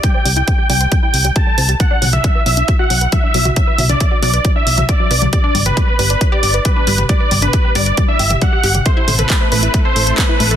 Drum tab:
HH |x-oxx-oxx-oxx-ox|x-oxx-oxx-oxx-ox|x-oxx-oxx-oxx-ox|x-oxx-oxx-oxx-ox|
CP |----------------|----------------|----------------|----------------|
T2 |----------------|--oo-----------o|--oo-------o---o|--oo-----------o|
BD |o---o---o---o---|o---o---o---o---|o---o---o---o---|o---o---o---o---|

HH |x-oxx-oxx-oxx-ox|x-oxx-oxx-oxx-ox|
CP |----------------|----x-------x---|
T2 |--oo-------o---o|--oo-----------o|
BD |o---o---o---o---|o---o---o---o---|